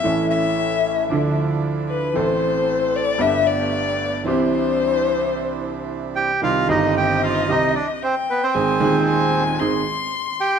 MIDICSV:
0, 0, Header, 1, 5, 480
1, 0, Start_track
1, 0, Key_signature, 0, "major"
1, 0, Tempo, 526778
1, 44, Time_signature, 4, 2, 24, 8
1, 4364, Tempo, 540541
1, 5814, Key_signature, -3, "minor"
1, 6764, Tempo, 524934
1, 9598, End_track
2, 0, Start_track
2, 0, Title_t, "Violin"
2, 0, Program_c, 0, 40
2, 0, Note_on_c, 0, 76, 109
2, 254, Note_off_c, 0, 76, 0
2, 277, Note_on_c, 0, 76, 107
2, 1208, Note_off_c, 0, 76, 0
2, 1724, Note_on_c, 0, 71, 80
2, 1964, Note_on_c, 0, 72, 90
2, 1977, Note_off_c, 0, 71, 0
2, 2697, Note_on_c, 0, 74, 99
2, 2710, Note_off_c, 0, 72, 0
2, 2929, Note_on_c, 0, 76, 111
2, 2942, Note_off_c, 0, 74, 0
2, 3159, Note_on_c, 0, 74, 100
2, 3173, Note_off_c, 0, 76, 0
2, 3881, Note_off_c, 0, 74, 0
2, 3896, Note_on_c, 0, 72, 93
2, 5300, Note_off_c, 0, 72, 0
2, 5818, Note_on_c, 0, 75, 99
2, 7255, Note_on_c, 0, 79, 100
2, 7269, Note_off_c, 0, 75, 0
2, 7717, Note_on_c, 0, 80, 103
2, 7730, Note_off_c, 0, 79, 0
2, 8203, Note_off_c, 0, 80, 0
2, 8207, Note_on_c, 0, 80, 107
2, 8692, Note_on_c, 0, 84, 111
2, 8705, Note_off_c, 0, 80, 0
2, 9598, Note_off_c, 0, 84, 0
2, 9598, End_track
3, 0, Start_track
3, 0, Title_t, "Bandoneon"
3, 0, Program_c, 1, 23
3, 5576, Note_on_c, 1, 79, 90
3, 5584, Note_on_c, 1, 67, 79
3, 5799, Note_off_c, 1, 79, 0
3, 5803, Note_off_c, 1, 67, 0
3, 5822, Note_on_c, 1, 77, 104
3, 5828, Note_on_c, 1, 65, 81
3, 6041, Note_off_c, 1, 77, 0
3, 6045, Note_off_c, 1, 65, 0
3, 6059, Note_on_c, 1, 75, 97
3, 6065, Note_on_c, 1, 63, 73
3, 6279, Note_off_c, 1, 75, 0
3, 6282, Note_off_c, 1, 63, 0
3, 6302, Note_on_c, 1, 79, 99
3, 6316, Note_on_c, 1, 67, 76
3, 6518, Note_off_c, 1, 79, 0
3, 6525, Note_off_c, 1, 67, 0
3, 6535, Note_on_c, 1, 77, 95
3, 6540, Note_on_c, 1, 65, 76
3, 6754, Note_off_c, 1, 65, 0
3, 6768, Note_on_c, 1, 75, 92
3, 6775, Note_off_c, 1, 77, 0
3, 6779, Note_on_c, 1, 63, 75
3, 6991, Note_off_c, 1, 75, 0
3, 6997, Note_off_c, 1, 63, 0
3, 7000, Note_on_c, 1, 74, 85
3, 7007, Note_on_c, 1, 62, 72
3, 7110, Note_off_c, 1, 74, 0
3, 7115, Note_off_c, 1, 62, 0
3, 7258, Note_on_c, 1, 72, 91
3, 7262, Note_on_c, 1, 60, 68
3, 7364, Note_off_c, 1, 72, 0
3, 7367, Note_off_c, 1, 60, 0
3, 7503, Note_on_c, 1, 71, 86
3, 7506, Note_on_c, 1, 59, 71
3, 7610, Note_off_c, 1, 59, 0
3, 7619, Note_off_c, 1, 71, 0
3, 7622, Note_on_c, 1, 72, 83
3, 7626, Note_on_c, 1, 60, 69
3, 8538, Note_off_c, 1, 72, 0
3, 8540, Note_off_c, 1, 60, 0
3, 9426, Note_on_c, 1, 67, 85
3, 9428, Note_on_c, 1, 79, 111
3, 9598, Note_off_c, 1, 67, 0
3, 9598, Note_off_c, 1, 79, 0
3, 9598, End_track
4, 0, Start_track
4, 0, Title_t, "Bandoneon"
4, 0, Program_c, 2, 23
4, 39, Note_on_c, 2, 61, 64
4, 41, Note_on_c, 2, 57, 70
4, 45, Note_on_c, 2, 64, 73
4, 958, Note_off_c, 2, 61, 0
4, 959, Note_off_c, 2, 57, 0
4, 961, Note_off_c, 2, 64, 0
4, 1005, Note_on_c, 2, 53, 67
4, 1006, Note_on_c, 2, 62, 64
4, 1010, Note_on_c, 2, 64, 75
4, 1916, Note_off_c, 2, 53, 0
4, 1917, Note_off_c, 2, 62, 0
4, 1919, Note_off_c, 2, 64, 0
4, 1968, Note_on_c, 2, 69, 78
4, 1969, Note_on_c, 2, 60, 62
4, 2875, Note_off_c, 2, 60, 0
4, 2875, Note_off_c, 2, 69, 0
4, 2917, Note_on_c, 2, 57, 72
4, 2920, Note_on_c, 2, 67, 78
4, 2921, Note_on_c, 2, 59, 65
4, 3832, Note_off_c, 2, 57, 0
4, 3833, Note_off_c, 2, 67, 0
4, 3834, Note_off_c, 2, 59, 0
4, 3882, Note_on_c, 2, 60, 75
4, 3884, Note_on_c, 2, 62, 66
4, 3885, Note_on_c, 2, 64, 78
4, 5718, Note_off_c, 2, 60, 0
4, 5719, Note_off_c, 2, 62, 0
4, 5719, Note_off_c, 2, 64, 0
4, 5814, Note_on_c, 2, 60, 54
4, 5819, Note_on_c, 2, 63, 48
4, 5819, Note_on_c, 2, 67, 60
4, 6016, Note_off_c, 2, 60, 0
4, 6018, Note_off_c, 2, 63, 0
4, 6018, Note_off_c, 2, 67, 0
4, 6058, Note_on_c, 2, 60, 85
4, 6060, Note_on_c, 2, 63, 73
4, 6062, Note_on_c, 2, 67, 88
4, 6732, Note_off_c, 2, 60, 0
4, 6732, Note_off_c, 2, 63, 0
4, 6733, Note_off_c, 2, 67, 0
4, 6771, Note_on_c, 2, 63, 49
4, 6774, Note_on_c, 2, 60, 55
4, 6775, Note_on_c, 2, 67, 59
4, 6970, Note_off_c, 2, 63, 0
4, 6972, Note_off_c, 2, 60, 0
4, 6973, Note_off_c, 2, 67, 0
4, 7735, Note_on_c, 2, 60, 54
4, 7736, Note_on_c, 2, 63, 50
4, 7740, Note_on_c, 2, 68, 64
4, 7934, Note_off_c, 2, 60, 0
4, 7935, Note_off_c, 2, 63, 0
4, 7937, Note_off_c, 2, 68, 0
4, 7976, Note_on_c, 2, 60, 81
4, 7980, Note_on_c, 2, 63, 72
4, 7981, Note_on_c, 2, 68, 95
4, 8655, Note_off_c, 2, 60, 0
4, 8657, Note_off_c, 2, 63, 0
4, 8657, Note_off_c, 2, 68, 0
4, 8689, Note_on_c, 2, 60, 56
4, 8691, Note_on_c, 2, 63, 50
4, 8691, Note_on_c, 2, 68, 63
4, 8890, Note_off_c, 2, 60, 0
4, 8892, Note_off_c, 2, 63, 0
4, 8892, Note_off_c, 2, 68, 0
4, 9598, End_track
5, 0, Start_track
5, 0, Title_t, "Grand piano"
5, 0, Program_c, 3, 0
5, 22, Note_on_c, 3, 52, 59
5, 32, Note_on_c, 3, 57, 53
5, 41, Note_on_c, 3, 45, 66
5, 43, Note_on_c, 3, 33, 64
5, 46, Note_on_c, 3, 61, 48
5, 56, Note_on_c, 3, 69, 63
5, 950, Note_off_c, 3, 52, 0
5, 955, Note_off_c, 3, 57, 0
5, 959, Note_off_c, 3, 45, 0
5, 960, Note_off_c, 3, 33, 0
5, 962, Note_off_c, 3, 61, 0
5, 967, Note_off_c, 3, 69, 0
5, 992, Note_on_c, 3, 53, 54
5, 1000, Note_on_c, 3, 62, 55
5, 1009, Note_on_c, 3, 50, 68
5, 1011, Note_on_c, 3, 38, 68
5, 1017, Note_on_c, 3, 64, 54
5, 1032, Note_on_c, 3, 69, 60
5, 1909, Note_off_c, 3, 53, 0
5, 1913, Note_off_c, 3, 62, 0
5, 1918, Note_off_c, 3, 50, 0
5, 1919, Note_off_c, 3, 38, 0
5, 1922, Note_off_c, 3, 64, 0
5, 1929, Note_off_c, 3, 69, 0
5, 1944, Note_on_c, 3, 52, 60
5, 1959, Note_on_c, 3, 57, 53
5, 1963, Note_on_c, 3, 45, 69
5, 1964, Note_on_c, 3, 33, 67
5, 1966, Note_on_c, 3, 60, 51
5, 1978, Note_on_c, 3, 69, 66
5, 2862, Note_off_c, 3, 52, 0
5, 2870, Note_off_c, 3, 57, 0
5, 2872, Note_off_c, 3, 45, 0
5, 2873, Note_off_c, 3, 33, 0
5, 2874, Note_off_c, 3, 60, 0
5, 2879, Note_off_c, 3, 69, 0
5, 2897, Note_on_c, 3, 55, 61
5, 2907, Note_on_c, 3, 31, 68
5, 2907, Note_on_c, 3, 59, 55
5, 2913, Note_on_c, 3, 43, 70
5, 2918, Note_on_c, 3, 62, 53
5, 2930, Note_on_c, 3, 69, 63
5, 3822, Note_off_c, 3, 55, 0
5, 3827, Note_off_c, 3, 31, 0
5, 3827, Note_off_c, 3, 59, 0
5, 3829, Note_off_c, 3, 43, 0
5, 3832, Note_off_c, 3, 62, 0
5, 3838, Note_off_c, 3, 69, 0
5, 3860, Note_on_c, 3, 52, 63
5, 3877, Note_on_c, 3, 60, 55
5, 3883, Note_on_c, 3, 36, 71
5, 3883, Note_on_c, 3, 48, 73
5, 3890, Note_on_c, 3, 62, 49
5, 3899, Note_on_c, 3, 67, 70
5, 5707, Note_off_c, 3, 52, 0
5, 5715, Note_off_c, 3, 60, 0
5, 5718, Note_off_c, 3, 36, 0
5, 5718, Note_off_c, 3, 48, 0
5, 5722, Note_off_c, 3, 62, 0
5, 5726, Note_off_c, 3, 67, 0
5, 5808, Note_on_c, 3, 60, 43
5, 5810, Note_on_c, 3, 48, 55
5, 5810, Note_on_c, 3, 55, 47
5, 5811, Note_on_c, 3, 36, 56
5, 5812, Note_on_c, 3, 51, 49
5, 5812, Note_on_c, 3, 67, 53
5, 6013, Note_off_c, 3, 60, 0
5, 6014, Note_off_c, 3, 48, 0
5, 6014, Note_off_c, 3, 55, 0
5, 6015, Note_off_c, 3, 36, 0
5, 6015, Note_off_c, 3, 51, 0
5, 6015, Note_off_c, 3, 67, 0
5, 6030, Note_on_c, 3, 51, 71
5, 6043, Note_on_c, 3, 55, 64
5, 6050, Note_on_c, 3, 43, 81
5, 6053, Note_on_c, 3, 31, 87
5, 6056, Note_on_c, 3, 60, 61
5, 6070, Note_on_c, 3, 67, 75
5, 6718, Note_off_c, 3, 51, 0
5, 6724, Note_off_c, 3, 55, 0
5, 6727, Note_off_c, 3, 43, 0
5, 6729, Note_off_c, 3, 31, 0
5, 6731, Note_off_c, 3, 60, 0
5, 6737, Note_off_c, 3, 67, 0
5, 6757, Note_on_c, 3, 36, 57
5, 6757, Note_on_c, 3, 51, 50
5, 6758, Note_on_c, 3, 55, 45
5, 6759, Note_on_c, 3, 60, 45
5, 6762, Note_on_c, 3, 67, 59
5, 6763, Note_on_c, 3, 48, 61
5, 6964, Note_off_c, 3, 36, 0
5, 6964, Note_off_c, 3, 51, 0
5, 6964, Note_off_c, 3, 55, 0
5, 6964, Note_off_c, 3, 60, 0
5, 6966, Note_off_c, 3, 48, 0
5, 6966, Note_off_c, 3, 67, 0
5, 7727, Note_on_c, 3, 56, 46
5, 7730, Note_on_c, 3, 32, 62
5, 7731, Note_on_c, 3, 51, 50
5, 7731, Note_on_c, 3, 60, 45
5, 7733, Note_on_c, 3, 68, 59
5, 7734, Note_on_c, 3, 44, 57
5, 7931, Note_off_c, 3, 56, 0
5, 7932, Note_off_c, 3, 32, 0
5, 7932, Note_off_c, 3, 60, 0
5, 7933, Note_off_c, 3, 51, 0
5, 7934, Note_off_c, 3, 44, 0
5, 7934, Note_off_c, 3, 68, 0
5, 7949, Note_on_c, 3, 51, 70
5, 7961, Note_on_c, 3, 56, 71
5, 7967, Note_on_c, 3, 27, 89
5, 7967, Note_on_c, 3, 39, 93
5, 7978, Note_on_c, 3, 60, 69
5, 7989, Note_on_c, 3, 68, 74
5, 8642, Note_off_c, 3, 51, 0
5, 8647, Note_off_c, 3, 56, 0
5, 8650, Note_off_c, 3, 27, 0
5, 8650, Note_off_c, 3, 39, 0
5, 8656, Note_off_c, 3, 60, 0
5, 8661, Note_off_c, 3, 68, 0
5, 8690, Note_on_c, 3, 51, 52
5, 8694, Note_on_c, 3, 56, 48
5, 8697, Note_on_c, 3, 44, 61
5, 8699, Note_on_c, 3, 32, 60
5, 8699, Note_on_c, 3, 60, 49
5, 8700, Note_on_c, 3, 68, 56
5, 8891, Note_off_c, 3, 51, 0
5, 8893, Note_off_c, 3, 56, 0
5, 8894, Note_off_c, 3, 44, 0
5, 8895, Note_off_c, 3, 32, 0
5, 8896, Note_off_c, 3, 60, 0
5, 8896, Note_off_c, 3, 68, 0
5, 9598, End_track
0, 0, End_of_file